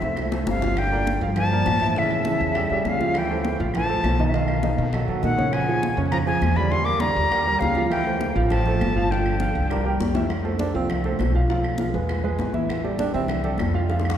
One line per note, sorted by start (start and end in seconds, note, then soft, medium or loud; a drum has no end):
0.00 0.43 C2 medium
0.00 0.27 A3 medium
0.00 0.46 C4 medium
0.00 0.27 A4 medium
0.00 0.28 C5 medium
0.00 0.25 E5 medium
0.00 high bongo medium
0.00 high conga soft
0.17 low bongo medium
0.17 high conga soft
0.17 claves medium
0.32 0.56 A3 medium
0.32 0.57 A4 medium
0.32 0.57 C5 medium
0.32 low bongo medium
0.32 high conga medium
0.47 1.16 G1 medium
0.47 0.79 C3 medium
0.47 0.80 F5 medium
0.47 low bongo medium
0.47 high conga medium
0.62 0.75 F3 medium
0.62 0.75 F4 medium
0.62 0.75 F5 medium
0.62 low bongo medium
0.62 low conga medium
0.77 1.22 D3 medium
0.77 1.22 G5 loud
0.77 high bongo medium
0.77 high conga soft
0.77 claves medium
0.92 1.16 A#3 medium
0.92 1.16 A#4 medium
0.92 1.17 D5 medium
0.92 high bongo soft
0.92 high conga soft
1.07 high bongo medium
1.07 high conga medium
1.21 1.63 G2 medium
1.21 1.46 F3 medium
1.21 1.47 F4 medium
1.21 1.47 F5 medium
1.21 high bongo soft
1.21 high conga soft
1.36 1.99 F3 medium
1.36 2.00 A5 loud
1.36 high bongo medium
1.36 high conga soft
1.36 low conga medium
1.36 claves medium
1.51 1.76 A#3 medium
1.51 1.76 A#4 medium
1.51 1.77 D5 medium
1.51 high bongo soft
1.51 high conga soft
1.66 2.35 A2 medium
1.66 high bongo soft
1.66 low bongo medium
1.66 high conga medium
1.66 claves medium
1.80 1.93 E3 medium
1.80 1.93 E4 medium
1.80 1.93 E5 medium
1.80 high conga medium
1.95 2.87 C#3 medium
1.95 2.20 E3 medium
1.95 2.21 E4 medium
1.95 2.21 E5 medium
1.95 2.90 E5 medium
1.95 high bongo medium
1.95 high conga soft
2.11 high bongo soft
2.11 high conga soft
2.11 claves medium
2.25 2.50 E3 medium
2.25 2.50 E4 medium
2.25 2.51 E5 medium
2.25 high bongo medium
2.25 high conga medium
2.40 2.68 E2 loud
2.40 high bongo soft
2.40 high conga soft
2.55 2.68 G3 medium
2.55 2.68 G4 medium
2.55 2.68 A4 medium
2.55 high bongo medium
2.55 high conga soft
2.55 claves medium
2.70 2.84 E2 medium
2.70 2.95 G3 medium
2.70 2.95 G4 medium
2.70 2.96 A4 medium
2.70 high bongo soft
2.70 high conga soft
2.85 3.54 D2 medium
2.85 3.19 C#3 medium
2.85 high bongo soft
2.85 low bongo medium
2.85 high conga medium
2.89 3.20 F5 loud
3.00 3.25 F3 medium
3.00 3.25 F4 medium
3.00 3.25 F5 medium
3.00 high conga medium
3.14 3.61 E3 medium
3.14 3.61 G5 medium
3.14 high bongo medium
3.14 high conga soft
3.14 claves medium
3.29 3.55 A3 medium
3.29 3.55 A4 medium
3.29 3.55 C5 medium
3.29 high bongo soft
3.29 high conga soft
3.45 high bongo medium
3.45 high conga loud
3.60 4.01 A1 loud
3.60 3.84 F3 medium
3.60 3.84 F4 medium
3.60 3.84 F5 medium
3.60 high bongo soft
3.60 high conga soft
3.74 4.24 F3 medium
3.74 4.24 A5 loud
3.74 high bongo medium
3.74 high conga soft
3.74 low conga medium
3.74 claves medium
3.89 4.14 A3 medium
3.89 4.14 A4 medium
3.89 4.14 C5 medium
3.89 high bongo soft
3.89 high conga soft
4.03 4.73 B1 medium
4.03 high bongo soft
4.03 low bongo medium
4.03 high conga medium
4.03 claves medium
4.19 4.31 D#3 medium
4.19 4.32 D#4 medium
4.19 4.32 D#5 medium
4.19 high conga medium
4.27 4.39 C3 soft
4.27 4.36 E5 medium
4.34 4.98 B2 medium
4.34 4.58 D#3 medium
4.34 4.58 D#4 medium
4.34 4.58 D#5 medium
4.34 4.97 F5 medium
4.34 high bongo medium
4.34 high conga soft
4.48 high bongo soft
4.48 high conga soft
4.48 claves medium
4.63 4.88 D#3 medium
4.63 4.88 D#4 medium
4.63 4.88 D#5 medium
4.63 high bongo medium
4.63 high conga medium
4.78 5.06 B2 medium
4.78 high bongo soft
4.78 high conga soft
4.93 5.06 F#3 medium
4.93 5.06 F#4 medium
4.93 5.06 A4 medium
4.93 high bongo medium
4.93 high conga soft
4.93 claves medium
5.08 5.22 B2 medium
5.08 5.33 F#3 medium
5.08 5.33 F#4 medium
5.08 5.33 A4 medium
5.08 high bongo soft
5.08 high conga soft
5.22 5.92 A#2 medium
5.22 5.53 D#3 medium
5.22 5.55 F#5 loud
5.22 high bongo soft
5.22 low bongo medium
5.22 high conga medium
5.38 5.62 C#3 medium
5.38 5.62 C#4 medium
5.38 5.63 C#5 medium
5.38 high conga medium
5.52 5.97 F3 medium
5.52 5.98 G#5 medium
5.52 high bongo medium
5.52 high conga soft
5.52 claves medium
5.68 5.92 F3 medium
5.68 5.93 F4 medium
5.68 5.92 G#4 medium
5.68 high bongo soft
5.68 high conga soft
5.83 high bongo medium
5.83 high conga medium
5.97 6.39 F2 loud
5.97 6.22 C#3 medium
5.97 6.22 C#4 medium
5.97 6.22 C#5 medium
5.97 high bongo soft
5.97 high conga soft
6.12 6.19 F3 medium
6.12 6.18 A#5 loud
6.12 high bongo medium
6.12 high conga soft
6.12 low conga medium
6.12 claves medium
6.26 6.58 F3 medium
6.26 6.52 F3 medium
6.26 6.52 F4 medium
6.26 6.52 G#4 medium
6.26 6.58 G#5 medium
6.26 high bongo soft
6.26 high conga soft
6.41 7.11 E2 medium
6.41 high bongo soft
6.41 low bongo medium
6.41 high conga medium
6.41 claves medium
6.56 6.69 D3 medium
6.56 6.71 G3 medium
6.56 6.69 D4 medium
6.56 6.69 D5 medium
6.56 6.73 B5 medium
6.71 6.96 D3 medium
6.71 6.86 G3 medium
6.71 6.96 D4 medium
6.71 6.96 D5 medium
6.71 6.86 C6 loud
6.71 high bongo medium
6.71 high conga soft
6.85 7.01 A#3 medium
6.85 7.02 D6 loud
6.85 high bongo soft
6.85 high conga soft
6.85 claves medium
7.00 7.26 D3 medium
7.00 7.62 G3 medium
7.00 7.26 D4 medium
7.00 7.26 D5 medium
7.00 7.61 A#5 loud
7.00 high bongo medium
7.00 high conga medium
7.16 7.58 D#2 medium
7.16 high bongo soft
7.16 high conga soft
7.32 7.44 G3 medium
7.32 7.44 G4 medium
7.32 7.44 A#4 medium
7.32 high bongo medium
7.32 high conga soft
7.32 claves medium
7.46 7.71 G3 medium
7.46 7.71 G4 medium
7.46 7.72 A#4 medium
7.46 high bongo soft
7.46 high conga soft
7.59 8.30 D2 medium
7.59 7.89 C#3 medium
7.59 7.90 F5 loud
7.59 high bongo soft
7.59 low bongo medium
7.59 high conga medium
7.75 8.01 F3 medium
7.75 8.01 F4 medium
7.75 8.01 F5 medium
7.75 high conga medium
7.89 8.32 E3 medium
7.89 8.33 G5 loud
7.89 high bongo medium
7.89 high conga soft
7.89 claves medium
8.06 8.31 A3 medium
8.06 8.31 A4 medium
8.06 8.31 C5 medium
8.06 high bongo soft
8.06 high conga soft
8.21 high bongo medium
8.21 high conga medium
8.35 8.77 A1 medium
8.35 8.60 F3 medium
8.35 8.60 F4 medium
8.35 8.61 F5 medium
8.35 high bongo soft
8.35 high conga soft
8.49 9.11 F3 medium
8.49 9.13 A5 loud
8.49 high bongo medium
8.49 high conga soft
8.49 low conga medium
8.49 claves medium
8.65 8.91 A3 medium
8.65 8.91 A4 medium
8.65 8.91 C5 medium
8.65 high bongo soft
8.65 high conga soft
8.65 low conga medium
8.81 9.50 G1 medium
8.81 high bongo soft
8.81 low bongo medium
8.81 high conga medium
8.81 claves medium
8.96 9.08 F3 medium
8.96 9.08 F4 medium
8.96 9.08 F5 medium
9.10 10.00 D3 medium
9.10 9.36 F3 medium
9.10 9.36 F4 medium
9.10 9.36 F5 medium
9.10 10.00 G5 medium
9.10 high bongo medium
9.10 high conga soft
9.26 high bongo soft
9.26 high conga soft
9.26 claves medium
9.40 9.65 F3 medium
9.40 9.66 F4 medium
9.40 9.66 F5 medium
9.40 high bongo medium
9.40 high conga medium
9.55 9.97 C2 medium
9.55 high bongo soft
9.55 high conga soft
9.70 9.83 G3 medium
9.70 9.83 G4 medium
9.70 9.83 A#4 medium
9.70 high bongo medium
9.70 high conga soft
9.70 claves medium
9.85 10.10 G3 medium
9.85 10.10 G4 medium
9.85 10.10 A#4 medium
9.85 high conga soft
10.00 10.69 F2 medium
10.00 low bongo medium
10.00 high conga medium
10.15 10.27 E3 medium
10.15 10.27 E4 medium
10.15 10.28 E5 medium
10.15 low bongo loud
10.15 high conga medium
10.30 high bongo medium
10.30 high conga soft
10.30 claves medium
10.44 10.57 A3 medium
10.44 10.57 A4 medium
10.44 10.57 C5 medium
10.44 high bongo soft
10.44 high conga soft
10.59 10.72 A3 medium
10.59 10.74 D4 medium
10.59 10.72 A4 medium
10.59 10.73 C5 medium
10.59 high bongo medium
10.59 high conga medium
10.74 11.16 C2 medium
10.74 10.99 F3 medium
10.74 10.89 C4 medium
10.74 10.99 F4 medium
10.74 10.99 F5 medium
10.74 high bongo soft
10.74 high conga soft
10.90 high bongo medium
10.90 high conga soft
10.90 low conga medium
10.90 claves medium
11.04 11.29 A3 medium
11.04 11.30 A4 medium
11.04 11.30 C5 medium
11.04 high bongo soft
11.04 high conga soft
11.04 low conga medium
11.19 11.89 B1 medium
11.19 high bongo soft
11.19 low bongo medium
11.19 high conga medium
11.19 claves medium
11.34 11.47 F3 medium
11.34 11.47 F4 medium
11.34 11.47 F5 medium
11.34 high conga soft
11.48 11.74 F3 medium
11.48 11.74 F4 medium
11.48 11.75 F5 medium
11.48 high bongo medium
11.48 high conga soft
11.64 high bongo soft
11.64 high conga soft
11.64 claves medium
11.78 11.92 F3 medium
11.78 11.92 F4 medium
11.78 11.92 F5 medium
11.78 high bongo medium
11.78 high conga medium
11.94 12.36 E2 medium
11.94 12.19 G#3 medium
11.94 12.19 G#4 medium
11.94 12.19 B4 medium
11.94 high bongo soft
11.94 high conga soft
12.09 high bongo medium
12.09 high conga soft
12.09 claves medium
12.24 12.49 G#3 medium
12.24 12.49 G#4 medium
12.24 12.49 B4 medium
12.24 high bongo soft
12.24 high conga soft
12.38 13.08 A1 medium
12.38 high bongo soft
12.38 low bongo medium
12.38 high conga medium
12.54 12.79 E3 medium
12.54 12.79 E4 medium
12.54 12.79 E5 medium
12.54 high conga medium
12.69 high bongo medium
12.69 high conga soft
12.69 claves medium
12.84 12.97 G3 medium
12.84 12.97 G4 medium
12.84 12.97 A4 medium
12.84 high bongo soft
12.84 high conga soft
12.99 13.12 G3 medium
12.99 13.13 D4 medium
12.99 13.12 G4 medium
12.99 13.13 A4 medium
12.99 high bongo medium
12.99 high conga loud
13.14 13.56 C2 medium
13.14 13.39 E3 medium
13.14 13.28 C4 medium
13.14 13.39 E4 medium
13.14 13.40 E5 medium
13.14 high bongo soft
13.14 high conga soft
13.28 high bongo medium
13.28 high conga soft
13.28 low conga medium
13.28 claves medium
13.44 13.69 G3 medium
13.44 13.69 G4 medium
13.44 13.69 A4 medium
13.44 high bongo soft
13.44 high conga soft
13.44 low conga medium
13.58 14.18 F2 medium
13.58 high bongo soft
13.58 low bongo medium
13.58 high conga medium
13.58 claves medium
13.74 13.87 F3 medium
13.74 13.87 F4 medium
13.74 13.87 F5 medium
13.74 high conga soft
13.89 14.14 F3 medium
13.89 14.14 F4 medium
13.89 14.14 F5 medium
13.89 high bongo medium
13.89 high conga soft
14.00 high bongo medium
14.00 high conga soft
14.05 claves medium
14.10 high bongo medium